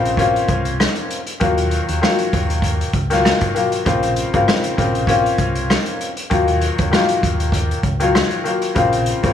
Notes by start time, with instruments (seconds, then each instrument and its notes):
Already playing: fingered electric bass A#1, upright piano C#3 A#3 C4 F4
0.05 closed hi-hat
0.17 upright piano A#3 C4 C#4 F4, kick, closed hi-hat
0.36 closed hi-hat
0.48 fingered electric bass C2, kick, closed hi-hat
0.65 closed hi-hat
0.80 cross-stick, snare
0.96 closed hi-hat
1.11 closed hi-hat
1.27 closed hi-hat
1.40 fingered electric bass D#2, upright piano D#3 F#3 A#3 F4, kick, closed hi-hat
1.58 closed hi-hat
1.71 closed hi-hat
1.89 fingered electric bass D#2, closed hi-hat
2.02 upright piano D#3 F#3 A#3 F4, cross-stick, snare
2.19 closed hi-hat
2.33 fingered electric bass D#2, kick, closed hi-hat
2.50 closed hi-hat
2.62 kick, closed hi-hat
2.81 closed hi-hat
2.93 fingered electric bass C#2, kick, closed hi-hat
3.10 upright piano D#3 F#3 A#3 F4, snare, closed hi-hat
3.25 cross-stick, snare
3.41 kick, closed hi-hat
3.54 upright piano D#3 F#3 A#3 F4, closed hi-hat
3.72 closed hi-hat
3.85 fingered electric bass A#1, upright piano C#3 A#3 C4 F4, kick, closed hi-hat
4.03 closed hi-hat
4.16 closed hi-hat
4.33 fingered electric bass G#1, upright piano C#3 A#3 C4 F4, kick, closed hi-hat
4.48 cross-stick, snare
4.64 closed hi-hat
4.77 fingered electric bass A#1, upright piano C#3 A#3 C4 F4, kick, closed hi-hat
4.95 closed hi-hat
5.07 upright piano A#3 C4 C#4 F4, kick, closed hi-hat
5.26 closed hi-hat
5.38 fingered electric bass C2, kick, closed hi-hat
5.55 closed hi-hat
5.70 cross-stick, snare
5.86 closed hi-hat
6.01 closed hi-hat
6.17 closed hi-hat
6.30 fingered electric bass D#2, upright piano D#3 F#3 A#3 F4, kick, closed hi-hat
6.48 closed hi-hat
6.61 closed hi-hat
6.78 fingered electric bass D#2, kick, closed hi-hat
6.92 upright piano D#3 F#3 A#3 F4, cross-stick, snare
7.09 closed hi-hat
7.23 fingered electric bass D#2, kick, closed hi-hat
7.40 closed hi-hat
7.52 kick, closed hi-hat
7.71 closed hi-hat
7.83 fingered electric bass C#2, kick, closed hi-hat
8.00 upright piano D#3 F#3 A#3 F4, closed hi-hat
8.15 cross-stick, snare
8.31 closed hi-hat
8.44 upright piano D#3 F#3 A#3 F4, closed hi-hat
8.62 closed hi-hat
8.75 fingered electric bass A#1, upright piano C#3 A#3 C4 F4, kick, closed hi-hat
8.93 closed hi-hat
9.06 closed hi-hat
9.23 fingered electric bass G#1, upright piano C#3 A#3 C4 F4, kick, closed hi-hat